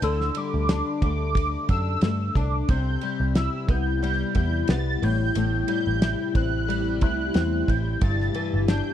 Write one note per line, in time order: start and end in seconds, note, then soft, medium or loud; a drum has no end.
0.00 0.29 D2 loud
0.00 2.69 D3 medium
0.00 0.69 D4 medium
0.00 0.39 E6 loud
0.00 hi-hat pedal medium
0.00 ride medium
0.21 snare soft
0.35 2.06 G3 medium
0.35 1.03 D6 loud
0.35 ride medium
0.54 0.81 D2 loud
0.69 1.68 D4 medium
0.69 snare loud
0.69 ride medium
1.02 1.56 D2 loud
1.02 2.02 A3 medium
1.02 1.66 D6 loud
1.02 kick loud
1.02 ride medium
1.35 kick loud
1.35 ride medium
1.69 1.96 F#2 medium
1.69 2.35 D4 medium
1.69 2.38 E6 loud
1.69 kick medium
1.69 ride medium
2.01 2.29 G2 loud
2.01 2.77 A3 medium
2.01 snare loud
2.01 ride medium
2.35 2.62 C2 medium
2.35 2.77 D4 medium
2.35 2.69 D6 medium
2.35 kick medium
2.35 ride medium
2.69 2.96 C2 loud
2.69 5.00 C3 medium
2.69 5.10 C3 medium
2.69 7.98 G3 medium
2.69 5.00 B3 medium
2.69 8.94 E4 medium
2.69 8.94 G4 loud
2.69 3.32 G6 loud
2.69 kick loud
2.69 ride medium
3.01 4.02 G3 medium
3.01 ride medium
3.20 3.47 C2 loud
3.35 4.36 E4 medium
3.35 3.72 E6 loud
3.35 snare loud
3.35 ride medium
3.69 4.22 C2 loud
3.69 4.68 B3 medium
3.69 4.03 G6 loud
3.69 kick loud
3.69 ride medium
4.03 5.38 G3 medium
4.03 4.34 G6 loud
4.03 ride medium
4.35 4.62 E2 loud
4.35 6.02 E4 medium
4.35 4.67 G6 loud
4.35 kick medium
4.35 ride medium
4.68 4.95 C2 loud
4.68 5.10 B3 medium
4.68 5.05 A6 loud
4.68 snare loud
4.68 ride medium
5.02 5.29 A1 loud
5.02 5.34 A2 medium
5.02 7.99 C3 medium
5.02 7.98 A3 medium
5.02 5.69 G6 loud
5.02 open hi-hat medium
5.02 ride medium
5.35 5.62 A1 loud
5.35 8.01 A2 medium
5.35 hi-hat pedal medium
5.35 ride medium
5.68 6.68 G3 medium
5.68 6.32 G6 loud
5.68 ride medium
5.87 6.14 A1 loud
6.02 7.01 E4 medium
6.02 snare loud
6.02 ride medium
6.35 7.02 A1 loud
6.35 7.34 C4 medium
6.35 6.98 F#6 loud
6.35 kick loud
6.35 ride medium
6.68 8.35 G3 medium
6.68 ride medium
7.01 7.29 C2 loud
7.01 7.68 E4 medium
7.01 7.71 F#6 loud
7.01 kick loud
7.01 ride medium
7.34 7.62 E2 loud
7.34 8.09 C4 medium
7.34 snare loud
7.34 ride medium
7.68 7.95 A1 loud
7.68 8.68 E4 medium
7.68 8.02 G6 loud
7.68 kick loud
7.68 ride medium
8.01 8.28 G1 loud
8.01 8.94 G2 medium
8.01 8.94 D3 medium
8.01 8.94 E3 medium
8.01 8.94 B3 medium
8.01 8.65 A6 loud
8.01 kick loud
8.01 ride medium
8.20 snare soft
8.34 8.94 E3 medium
8.34 ride medium
8.54 8.80 G1 loud
8.68 8.94 D4 medium
8.68 8.94 G6 loud
8.68 snare loud
8.68 ride medium